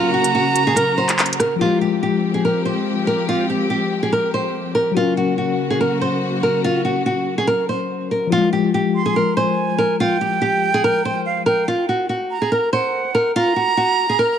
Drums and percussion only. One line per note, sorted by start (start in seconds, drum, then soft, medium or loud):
0.24 closed hi-hat medium
0.56 closed hi-hat medium
0.77 closed hi-hat medium
1.09 clap medium
1.09 closed hi-hat medium
1.19 clap loud
1.19 closed hi-hat soft
1.26 closed hi-hat medium
1.33 closed hi-hat medium
1.40 cross-stick medium
1.40 closed hi-hat medium